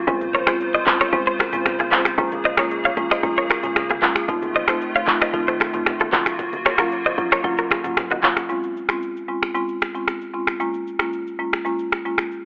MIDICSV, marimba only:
0, 0, Header, 1, 2, 480
1, 0, Start_track
1, 0, Key_signature, -5, "major"
1, 0, Tempo, 526316
1, 68, Time_signature, 4, 2, 24, 8
1, 11354, End_track
2, 0, Start_track
2, 0, Title_t, "Marimba"
2, 0, Program_c, 0, 12
2, 65, Note_on_c, 0, 56, 96
2, 67, Note_on_c, 0, 60, 89
2, 69, Note_on_c, 0, 61, 92
2, 71, Note_on_c, 0, 65, 111
2, 402, Note_off_c, 0, 56, 0
2, 403, Note_off_c, 0, 60, 0
2, 404, Note_off_c, 0, 61, 0
2, 405, Note_off_c, 0, 65, 0
2, 431, Note_on_c, 0, 56, 80
2, 433, Note_on_c, 0, 60, 76
2, 435, Note_on_c, 0, 61, 73
2, 437, Note_on_c, 0, 65, 90
2, 565, Note_off_c, 0, 56, 0
2, 566, Note_off_c, 0, 60, 0
2, 567, Note_off_c, 0, 61, 0
2, 568, Note_off_c, 0, 65, 0
2, 786, Note_on_c, 0, 56, 77
2, 788, Note_on_c, 0, 60, 73
2, 790, Note_on_c, 0, 61, 73
2, 792, Note_on_c, 0, 65, 82
2, 928, Note_off_c, 0, 56, 0
2, 929, Note_off_c, 0, 60, 0
2, 930, Note_off_c, 0, 61, 0
2, 931, Note_off_c, 0, 65, 0
2, 1025, Note_on_c, 0, 56, 102
2, 1027, Note_on_c, 0, 60, 86
2, 1029, Note_on_c, 0, 61, 90
2, 1031, Note_on_c, 0, 65, 105
2, 1168, Note_off_c, 0, 56, 0
2, 1169, Note_off_c, 0, 60, 0
2, 1169, Note_off_c, 0, 61, 0
2, 1170, Note_off_c, 0, 65, 0
2, 1392, Note_on_c, 0, 56, 82
2, 1393, Note_on_c, 0, 60, 76
2, 1395, Note_on_c, 0, 61, 73
2, 1397, Note_on_c, 0, 65, 89
2, 1525, Note_off_c, 0, 56, 0
2, 1526, Note_off_c, 0, 60, 0
2, 1527, Note_off_c, 0, 61, 0
2, 1528, Note_off_c, 0, 65, 0
2, 1746, Note_on_c, 0, 56, 80
2, 1747, Note_on_c, 0, 60, 72
2, 1749, Note_on_c, 0, 61, 70
2, 1751, Note_on_c, 0, 65, 84
2, 1888, Note_off_c, 0, 56, 0
2, 1889, Note_off_c, 0, 60, 0
2, 1890, Note_off_c, 0, 61, 0
2, 1890, Note_off_c, 0, 65, 0
2, 1986, Note_on_c, 0, 56, 96
2, 1988, Note_on_c, 0, 58, 90
2, 1989, Note_on_c, 0, 61, 91
2, 1991, Note_on_c, 0, 65, 108
2, 2322, Note_off_c, 0, 56, 0
2, 2323, Note_off_c, 0, 58, 0
2, 2324, Note_off_c, 0, 61, 0
2, 2325, Note_off_c, 0, 65, 0
2, 2351, Note_on_c, 0, 56, 80
2, 2353, Note_on_c, 0, 58, 74
2, 2356, Note_on_c, 0, 61, 71
2, 2357, Note_on_c, 0, 65, 87
2, 2485, Note_off_c, 0, 56, 0
2, 2486, Note_off_c, 0, 58, 0
2, 2487, Note_off_c, 0, 61, 0
2, 2488, Note_off_c, 0, 65, 0
2, 2707, Note_on_c, 0, 56, 76
2, 2709, Note_on_c, 0, 58, 74
2, 2711, Note_on_c, 0, 61, 74
2, 2713, Note_on_c, 0, 65, 85
2, 2849, Note_off_c, 0, 56, 0
2, 2849, Note_off_c, 0, 58, 0
2, 2850, Note_off_c, 0, 61, 0
2, 2851, Note_off_c, 0, 65, 0
2, 2947, Note_on_c, 0, 56, 97
2, 2949, Note_on_c, 0, 58, 92
2, 2950, Note_on_c, 0, 61, 92
2, 2953, Note_on_c, 0, 65, 110
2, 3088, Note_off_c, 0, 56, 0
2, 3089, Note_off_c, 0, 58, 0
2, 3090, Note_off_c, 0, 61, 0
2, 3091, Note_off_c, 0, 65, 0
2, 3312, Note_on_c, 0, 56, 78
2, 3314, Note_on_c, 0, 58, 72
2, 3315, Note_on_c, 0, 61, 74
2, 3317, Note_on_c, 0, 65, 86
2, 3445, Note_off_c, 0, 56, 0
2, 3446, Note_off_c, 0, 58, 0
2, 3447, Note_off_c, 0, 61, 0
2, 3448, Note_off_c, 0, 65, 0
2, 3665, Note_on_c, 0, 56, 77
2, 3667, Note_on_c, 0, 58, 72
2, 3669, Note_on_c, 0, 61, 72
2, 3670, Note_on_c, 0, 65, 86
2, 3808, Note_off_c, 0, 56, 0
2, 3809, Note_off_c, 0, 58, 0
2, 3810, Note_off_c, 0, 61, 0
2, 3810, Note_off_c, 0, 65, 0
2, 3906, Note_on_c, 0, 57, 98
2, 3907, Note_on_c, 0, 60, 87
2, 3909, Note_on_c, 0, 63, 87
2, 3911, Note_on_c, 0, 65, 109
2, 4242, Note_off_c, 0, 57, 0
2, 4243, Note_off_c, 0, 60, 0
2, 4244, Note_off_c, 0, 63, 0
2, 4245, Note_off_c, 0, 65, 0
2, 4270, Note_on_c, 0, 57, 81
2, 4272, Note_on_c, 0, 60, 74
2, 4273, Note_on_c, 0, 63, 71
2, 4275, Note_on_c, 0, 65, 89
2, 4404, Note_off_c, 0, 57, 0
2, 4405, Note_off_c, 0, 60, 0
2, 4406, Note_off_c, 0, 63, 0
2, 4407, Note_off_c, 0, 65, 0
2, 4624, Note_on_c, 0, 57, 80
2, 4627, Note_on_c, 0, 60, 72
2, 4628, Note_on_c, 0, 63, 73
2, 4630, Note_on_c, 0, 65, 88
2, 4767, Note_off_c, 0, 57, 0
2, 4769, Note_off_c, 0, 60, 0
2, 4769, Note_off_c, 0, 63, 0
2, 4770, Note_off_c, 0, 65, 0
2, 4864, Note_on_c, 0, 57, 100
2, 4865, Note_on_c, 0, 60, 91
2, 4867, Note_on_c, 0, 63, 91
2, 4869, Note_on_c, 0, 65, 111
2, 5007, Note_off_c, 0, 57, 0
2, 5007, Note_off_c, 0, 60, 0
2, 5009, Note_off_c, 0, 63, 0
2, 5009, Note_off_c, 0, 65, 0
2, 5229, Note_on_c, 0, 57, 75
2, 5232, Note_on_c, 0, 60, 72
2, 5233, Note_on_c, 0, 63, 72
2, 5235, Note_on_c, 0, 65, 87
2, 5364, Note_off_c, 0, 57, 0
2, 5365, Note_off_c, 0, 60, 0
2, 5366, Note_off_c, 0, 63, 0
2, 5367, Note_off_c, 0, 65, 0
2, 5584, Note_on_c, 0, 54, 83
2, 5585, Note_on_c, 0, 58, 74
2, 5588, Note_on_c, 0, 61, 74
2, 5589, Note_on_c, 0, 65, 89
2, 5727, Note_off_c, 0, 54, 0
2, 5728, Note_off_c, 0, 58, 0
2, 5729, Note_off_c, 0, 61, 0
2, 5730, Note_off_c, 0, 65, 0
2, 6188, Note_on_c, 0, 54, 83
2, 6189, Note_on_c, 0, 58, 77
2, 6192, Note_on_c, 0, 61, 73
2, 6193, Note_on_c, 0, 65, 89
2, 6323, Note_off_c, 0, 54, 0
2, 6324, Note_off_c, 0, 58, 0
2, 6325, Note_off_c, 0, 61, 0
2, 6326, Note_off_c, 0, 65, 0
2, 6544, Note_on_c, 0, 54, 81
2, 6547, Note_on_c, 0, 58, 72
2, 6548, Note_on_c, 0, 61, 72
2, 6550, Note_on_c, 0, 65, 90
2, 6687, Note_off_c, 0, 54, 0
2, 6688, Note_off_c, 0, 58, 0
2, 6689, Note_off_c, 0, 61, 0
2, 6690, Note_off_c, 0, 65, 0
2, 6784, Note_on_c, 0, 54, 99
2, 6786, Note_on_c, 0, 58, 89
2, 6788, Note_on_c, 0, 61, 91
2, 6790, Note_on_c, 0, 65, 111
2, 6927, Note_off_c, 0, 54, 0
2, 6928, Note_off_c, 0, 58, 0
2, 6929, Note_off_c, 0, 61, 0
2, 6930, Note_off_c, 0, 65, 0
2, 7150, Note_on_c, 0, 54, 80
2, 7152, Note_on_c, 0, 58, 73
2, 7154, Note_on_c, 0, 61, 71
2, 7156, Note_on_c, 0, 65, 83
2, 7284, Note_off_c, 0, 54, 0
2, 7285, Note_off_c, 0, 58, 0
2, 7286, Note_off_c, 0, 61, 0
2, 7287, Note_off_c, 0, 65, 0
2, 7505, Note_on_c, 0, 54, 80
2, 7508, Note_on_c, 0, 58, 73
2, 7510, Note_on_c, 0, 61, 71
2, 7511, Note_on_c, 0, 65, 85
2, 7648, Note_off_c, 0, 54, 0
2, 7649, Note_off_c, 0, 58, 0
2, 7650, Note_off_c, 0, 61, 0
2, 7650, Note_off_c, 0, 65, 0
2, 7744, Note_on_c, 0, 56, 88
2, 7746, Note_on_c, 0, 60, 77
2, 7748, Note_on_c, 0, 61, 84
2, 7749, Note_on_c, 0, 65, 99
2, 8081, Note_off_c, 0, 56, 0
2, 8082, Note_off_c, 0, 60, 0
2, 8083, Note_off_c, 0, 61, 0
2, 8084, Note_off_c, 0, 65, 0
2, 8109, Note_on_c, 0, 56, 71
2, 8111, Note_on_c, 0, 60, 64
2, 8113, Note_on_c, 0, 61, 67
2, 8115, Note_on_c, 0, 65, 81
2, 8244, Note_off_c, 0, 56, 0
2, 8245, Note_off_c, 0, 60, 0
2, 8246, Note_off_c, 0, 61, 0
2, 8247, Note_off_c, 0, 65, 0
2, 8465, Note_on_c, 0, 56, 68
2, 8466, Note_on_c, 0, 60, 67
2, 8468, Note_on_c, 0, 61, 65
2, 8471, Note_on_c, 0, 65, 81
2, 8608, Note_off_c, 0, 56, 0
2, 8608, Note_off_c, 0, 60, 0
2, 8609, Note_off_c, 0, 61, 0
2, 8610, Note_off_c, 0, 65, 0
2, 8704, Note_on_c, 0, 56, 89
2, 8706, Note_on_c, 0, 60, 79
2, 8708, Note_on_c, 0, 61, 78
2, 8710, Note_on_c, 0, 65, 96
2, 8847, Note_off_c, 0, 56, 0
2, 8848, Note_off_c, 0, 60, 0
2, 8849, Note_off_c, 0, 61, 0
2, 8850, Note_off_c, 0, 65, 0
2, 9070, Note_on_c, 0, 56, 73
2, 9071, Note_on_c, 0, 60, 68
2, 9073, Note_on_c, 0, 61, 62
2, 9075, Note_on_c, 0, 65, 79
2, 9204, Note_off_c, 0, 56, 0
2, 9205, Note_off_c, 0, 60, 0
2, 9206, Note_off_c, 0, 61, 0
2, 9207, Note_off_c, 0, 65, 0
2, 9426, Note_on_c, 0, 56, 69
2, 9428, Note_on_c, 0, 60, 64
2, 9430, Note_on_c, 0, 61, 64
2, 9431, Note_on_c, 0, 65, 81
2, 9568, Note_off_c, 0, 56, 0
2, 9569, Note_off_c, 0, 60, 0
2, 9570, Note_off_c, 0, 61, 0
2, 9571, Note_off_c, 0, 65, 0
2, 9665, Note_on_c, 0, 56, 89
2, 9667, Note_on_c, 0, 58, 84
2, 9669, Note_on_c, 0, 61, 80
2, 9671, Note_on_c, 0, 65, 96
2, 10002, Note_off_c, 0, 56, 0
2, 10003, Note_off_c, 0, 58, 0
2, 10004, Note_off_c, 0, 61, 0
2, 10005, Note_off_c, 0, 65, 0
2, 10031, Note_on_c, 0, 56, 71
2, 10033, Note_on_c, 0, 58, 68
2, 10035, Note_on_c, 0, 61, 67
2, 10036, Note_on_c, 0, 65, 82
2, 10165, Note_off_c, 0, 56, 0
2, 10165, Note_off_c, 0, 58, 0
2, 10166, Note_off_c, 0, 61, 0
2, 10167, Note_off_c, 0, 65, 0
2, 10387, Note_on_c, 0, 56, 74
2, 10389, Note_on_c, 0, 58, 66
2, 10391, Note_on_c, 0, 61, 68
2, 10392, Note_on_c, 0, 65, 79
2, 10529, Note_off_c, 0, 56, 0
2, 10529, Note_off_c, 0, 58, 0
2, 10530, Note_off_c, 0, 61, 0
2, 10531, Note_off_c, 0, 65, 0
2, 10626, Note_on_c, 0, 56, 89
2, 10628, Note_on_c, 0, 58, 87
2, 10630, Note_on_c, 0, 61, 83
2, 10632, Note_on_c, 0, 65, 97
2, 10768, Note_off_c, 0, 56, 0
2, 10769, Note_off_c, 0, 58, 0
2, 10770, Note_off_c, 0, 61, 0
2, 10771, Note_off_c, 0, 65, 0
2, 10991, Note_on_c, 0, 56, 76
2, 10994, Note_on_c, 0, 58, 66
2, 10995, Note_on_c, 0, 61, 66
2, 10997, Note_on_c, 0, 65, 83
2, 11125, Note_off_c, 0, 56, 0
2, 11126, Note_off_c, 0, 58, 0
2, 11127, Note_off_c, 0, 61, 0
2, 11128, Note_off_c, 0, 65, 0
2, 11354, End_track
0, 0, End_of_file